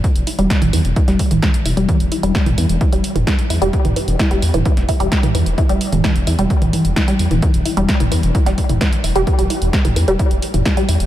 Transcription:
<<
  \new Staff \with { instrumentName = "Synth arpeggio sound" } { \clef bass \time 4/4 \key e \minor \tempo 4 = 130 e16 r16 e'16 g16 r16 e16 e16 r16 e'16 g16 r16 e16 e16 r16 e'16 g16 | e16 r16 e'16 g16 r16 e16 e16 r16 e'16 g16 r16 e16 e16 r16 e'16 g16 | r16 e16 e16 r16 e'16 g16 r16 e16 e16 r16 e'16 g16 r16 e16 e16 r16 | e'16 g16 r16 e16 e16 r16 e'16 g16 r16 e16 e16 r16 e'16 g16 r16 e16 |
e16 r16 e'16 g16 r16 e16 e16 r16 e'16 g16 r16 e16 e16 r16 e'16 g16 | e16 g16 e'16 r8 e16 e16 g16 e'16 r8 e16 e16 g16 e'16 r16 | }
  \new Staff \with { instrumentName = "Detuned saw bass" } { \clef bass \time 4/4 \key e \minor r16 e,,16 r16 e,,16 r16 e,,16 e,16 e,,16 r16 e,,16 r16 e,,16 r8 e,,16 e,,16 | r16 e,,16 r16 e,,16 r16 e,,16 e,16 e,,16 r16 e,,16 r16 e,,16 r8 e,16 e,,16 | r16 e,,16 r16 e,,16 r16 e,,16 e,16 e,,16 r16 e,,16 r16 e,,16 r8 e,16 e,,16 | r16 e,,16 r16 e,,16 r16 e,,16 e,16 e,,16 r16 e,,16 r16 e,,16 r8 e,16 e,,16 |
r16 e,,16 r16 e,,16 r16 e,,16 e,16 e,,16 r16 e,,16 r16 e,,16 r8 e,,16 e,,16 | r16 e,,16 r16 e,,16 r16 e,,16 e,16 e,,16 r16 e,,16 r16 e,,16 r8 e,16 e,,16 | }
  \new DrumStaff \with { instrumentName = "Drums" } \drummode { \time 4/4 <hh bd>16 hh16 hho16 hh16 <hh bd sn>16 <hh toml>16 hho16 hh16 <hh bd>16 <hh sn>16 <hho bd>16 <hh toml>16 <hh bd sn>16 hh16 hho16 hh16 | <hh bd>16 hh16 hho16 hh16 <hh bd sn>16 <hh toml>16 hho16 hh16 <hh bd>16 hh16 hho16 <hh toml>16 <hh bd sn>16 hh16 hho16 hh16 | <hh bd>16 <hh toml>16 hho16 hh16 <hh bd sn>16 hh16 hho16 <hh toml>16 <hh bd>16 <hh sn>16 <hho bd>16 hh16 <hh bd sn>16 <hh toml>16 hho16 hh16 | <hh bd>16 hh16 hho16 <hh toml>16 <hh bd sn>16 hh16 hho16 hh16 <hh bd>16 <hh toml>16 hho16 hh16 <hh bd sn>16 hh16 hho16 <hh toml>16 |
<hh bd>16 hh16 hho16 hh16 <hh bd sn>16 <hh toml>16 hho16 hh16 <hh bd>16 <hh sn>16 <hho bd>16 <hh toml>16 <hh bd sn>16 hh16 hho16 hh16 | <hh bd>16 hh16 hho16 hh16 <hh bd sn>16 <hh toml>16 hho16 hh16 <hh bd>16 hh16 hho16 <hh toml>16 <hh bd sn>16 hh16 hho16 hh16 | }
>>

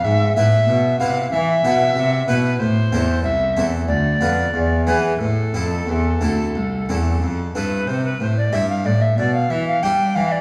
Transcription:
<<
  \new Staff \with { instrumentName = "Recorder" } { \time 4/4 \key a \minor \tempo 4 = 92 e''8 e''4 f''8 e''4. b'8 | c''4 e''8. r16 d''4. b'8 | a'2.~ a'8 b'8 | \key c \major c''16 b'16 c''16 d''16 e''16 f''16 d''16 e''16 d''16 f''16 e''16 f''16 g''8 f''16 d''16 | }
  \new Staff \with { instrumentName = "Harpsichord" } { \time 4/4 \key a \minor r8 <b e' b'>4 <b e' b'>8 r8 <b e' b'>4 <b e' b'>8 | r8 <c' e' a'>4 <c' e' a'>8 r8 <b f' b'>8 r8 <b e' gis'>8 | r8 <c' e' a'>4 <c' e' a'>8 r8 <c' e' a'>4 <c' e' a'>8 | \key c \major r4 <e' g'>4 r4 <d' g'>4 | }
  \new Staff \with { instrumentName = "Harpsichord" } { \clef bass \time 4/4 \key a \minor gis,8 a,8 b,8 c8 e8 b,8 c8 b,8 | a,8 e,8 c,8 e,8 d,8 f,8 e,8 e8 | a,8 f,8 e,8 d,8 c,8 e,8 f,8 g,8 | \key c \major c8 a,8 g,8 a,8 b,8 e8 g8 e8 | }
  \new Staff \with { instrumentName = "Cello" } { \clef bass \time 4/4 \key a \minor gis,8 a,8 b,8 c8 e8 b,8 c8 b,8 | a,8 e,8 c,8 e,8 d,8 f,8 e,8 e8 | a,8 f,8 e,8 d,8 c,8 e,8 f,8 g,8 | \key c \major c8 a,8 g,8 a,8 b,8 e8 g8 e8 | }
>>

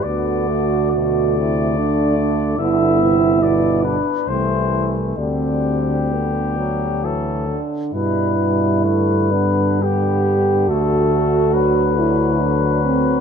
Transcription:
<<
  \new Staff \with { instrumentName = "Cornet" } { \time 3/4 \key g \major \tempo 4 = 69 d''4 d''2 | e''4 d''8 b'8 c''8 r8 | g'2 a'8 r8 | b'4 b'4 g'4 |
a'4 b'2 | }
  \new Staff \with { instrumentName = "French horn section" } { \time 3/4 \key g \major fis'4. e'8 d'8 d'8 | e'4. d'8 c'4 | c'4 b4 r8 d'8 | e'4. d'8 g'4 |
fis'4. e'8 d'8 c'8 | }
  \new Staff \with { instrumentName = "Euphonium" } { \time 3/4 \key g \major b8 a8 a2 | b4 b8 r8 a8 a8 | g2 fis8 r8 | g4 a8 b8 b4 |
a4 fis8 fis4. | }
  \new Staff \with { instrumentName = "Trombone" } { \clef bass \time 3/4 \key g \major d4 b,8 c8 d4 | d8 c8 b,8 r8 e4 | d4 d8 fis8 e8 d8 | b,8 b,8 d2~ |
d2. | }
  \new Staff \with { instrumentName = "Tuba" } { \clef bass \time 3/4 \key g \major d,2. | g,,4. r8 c,4 | d,2~ d,8 r8 | g,2. |
d,2. | }
>>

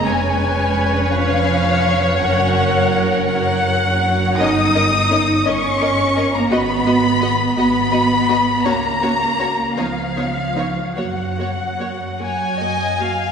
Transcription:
<<
  \new Staff \with { instrumentName = "Violin section" } { \time 6/8 \key fis \major \tempo 4. = 56 gis''4. eis''4. | fis''4. fis''4. | dis'''4. cis'''4~ cis'''16 ais''16 | b''4. b''4. |
ais''4. eis''4. | fis''2~ fis''8 r8 | }
  \new Staff \with { instrumentName = "Violin section" } { \time 6/8 \key fis \major << { cis''2.~ | cis''2. | dis''8 dis''8 dis''8 dis''8 dis''8 dis''8 | dis''8 dis''8 dis''8 dis''8 dis''8 dis''8 |
cis''8 cis''8 cis''8 cis''8 cis''8 cis''8 | cis''8 cis''8 cis''8 gis''4. | } \\ { r2. | r2. | r2. | r2. |
r2. | r4. cis''8 dis''8 eis''8 | } >> }
  \new Staff \with { instrumentName = "Viola section" } { \time 6/8 \key fis \major << { b'2. | ais'2. | ais'8 ais'8 ais'8 ais'8 ais'8 ais'8 | fis'8 fis'8 fis'8 fis'8 fis'8 fis'8 |
fis'8 fis'8 fis'8 dis'8 dis'8 dis'8 | fis'8 fis'8 fis'8 fis'8 fis'8 fis'8 | } \\ { cis'2.~ | cis'2. | cis'8 cis'8 cis'8 cis'8 cis'8 cis'8 | b8 b8 b8 b8 b8 b8 |
cis'8 cis'8 cis'8 b8 b8 b8 | ais8 ais8 ais8 ais8 ais8 ais8 | } >> }
  \new Staff \with { instrumentName = "Cello section" } { \time 6/8 \key fis \major gis4. eis4. | fis4. fis4. | dis'4. cis'4~ cis'16 ais16 | b4. b4. |
ais4. eis4. | fis2~ fis8 r8 | }
  \new Staff \with { instrumentName = "Double bass section" } { \clef bass \time 6/8 \key fis \major eis,,2. | fis,,2. | g,,4. g,,4. | gis,,4. gis,,4. |
cis,4. cis,4. | fis,4. fis,4. | }
>>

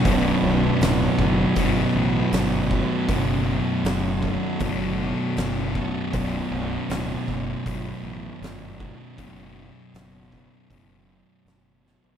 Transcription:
<<
  \new Staff \with { instrumentName = "Pipe organ" } { \clef bass \time 4/4 \key b \minor \tempo 4 = 79 << { b1 | a1 | r1 | r1 | } \\ { <d fis>1~ | <d fis>1 | r1 | r1 | } >> }
  \new Staff \with { instrumentName = "Distorted electric guitar" } { \clef bass \time 4/4 \key b \minor <b,, fis, b,>2 <b,, fis, b,>2 | <b,, fis, b,>2 <b,, fis, b,>2 | <b,, fis, b,>2 <b,, fis, b,>2 | <b,, fis, b,>2 <b,, fis, b,>2 | }
  \new Staff \with { instrumentName = "Distorted electric guitar" } { \clef bass \time 4/4 \key b \minor <b,, fis, b,>2.~ <b,, fis, b,>8 <b,, fis, b,>8 | <b,, fis, b,>2.~ <b,, fis, b,>8 <b,, fis, b,>8 | <b,, fis, b,>2.~ <b,, fis, b,>8 <b,, fis, b,>8 | <b,, fis, b,>2.~ <b,, fis, b,>8 <b,, fis, b,>8 | }
  \new Staff \with { instrumentName = "Fingered electric bass" } { \clef bass \time 4/4 \key b \minor b,,,8 b,,,8 d,,8 fis,,8 g,,8 a,,8 g,,4 | fis,,4 fis,,4 fis,,4 fis,,4 | b,,,8 b,,,8 d,,8 fis,,8 g,,8 a,,8 g,,4 | fis,,4 fis,,4 fis,,4 fis,,4 | }
  \new DrumStaff \with { instrumentName = "Drums" } \drummode { \time 4/4 <hho bd>4 <hho sn>8 bd8 <hho bd>4 <hho sn>8 bd8 | <hho bd>4 <hho sn>8 bd8 <hho bd>4 <hho sn>8 bd8 | <hho bd>4 <hho sn>8 bd8 <hho bd>4 <hho sn>8 bd8 | <hho bd>4 <hho sn>8 bd8 <hho bd>4 <hho sn>8 sn16 tomfh16 | }
>>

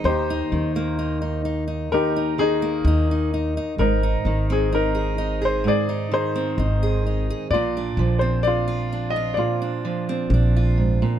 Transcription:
<<
  \new Staff \with { instrumentName = "Grand piano" } { \time 4/4 \key ees \major \tempo 4 = 64 << { c''4. r8 bes'8 aes'4 r8 | bes'8. aes'16 bes'8. c''16 d''8 c''4 r8 | d''8. c''16 d''8. ees''16 d''4. r8 | } \\ { <ees' g'>2 <ees' g'>8 ees'4. | ees'4 ees'4 aes'8 <ees' aes'>4. | f'4 f'4 f'2 | } >> }
  \new Staff \with { instrumentName = "Steel-string acoustic guitar" } { \time 4/4 \key ees \major << { ees'16 ees'8 bes16 ees'16 ees'16 ees'16 ees'8 ees'8 bes16 ees'16 ees'16 ees'16 ees'16 | r16 ees'8 c'16 ees'16 aes'16 ees'16 aes'8 ees'8 c'16 ees'16 aes'16 ees'16 aes'16 | r16 d'8 c'16 d'16 f'16 d'16 f'8 d'8 c'16 d'16 f'8. | } \\ { <ees, ees>8 ees4. ees,8 ees4. | aes,8 ees4. aes,8 ees4. | bes,8 f4. bes,8 f4 aes,16 bes,16 | } >> }
  \new Staff \with { instrumentName = "Upright bass" } { \clef bass \time 4/4 \key ees \major ees,8 ees,2 r8 ees,4 | aes,,8 aes,,2 r8 aes,,4 | bes,,8 bes,,2 r8 bes,,4 | }
>>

